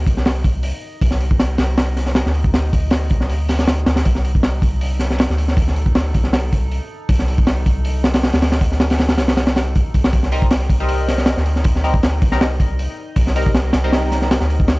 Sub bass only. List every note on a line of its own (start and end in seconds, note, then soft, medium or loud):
0.06 0.72 C2 medium
1.01 1.57 C2 medium
1.59 2.24 C2 medium
2.26 3.12 D2 medium
3.11 3.31 C2 medium
3.29 3.85 D2 loud
3.86 4.04 D2 medium
4.06 4.61 C2 loud
4.62 5.28 C2 medium
5.30 6.16 D2 medium
6.15 6.80 C2 medium
7.09 7.65 C2 loud
7.66 8.32 C2 medium
8.33 9.20 D2 medium
9.18 9.75 C2 medium
9.76 9.85 C2 loud
9.94 10.11 C2 medium
10.13 10.69 C2 loud
10.69 11.35 C2 medium
11.37 12.23 D2 medium
12.22 12.88 C2 medium
13.16 13.72 C2 loud
13.74 14.39 C2 medium
14.41 14.79 D2 medium